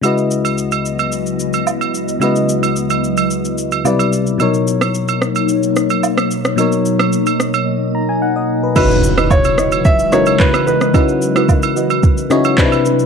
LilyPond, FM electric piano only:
\new Staff \with { instrumentName = "FM electric piano" } { \time 4/4 \key cis \dorian \tempo 4 = 110 << { r1 | r1 | r1 | r2 r8 ais''16 gis''16 fis''16 dis''8 b'16~ |
b'16 r2. r8. | r1 | } \\ { <cis gis e' fis' b' dis''>1 | <cis gis e' fis' b' dis''>2. <c g e' b' d''>4 | <b, fis dis' ais' cis''>1 | <b, fis dis' ais' cis''>1 |
<cis cis' dis' e' fis' b'>4. r4 <cis cis' dis' e' fis' ais'>4 r8 | <cis cis' dis' e' fis' b'>4. r4 <cis cis' dis' e' fis' cis''>8 <c c' d' dis' e' b'>4 | } >> }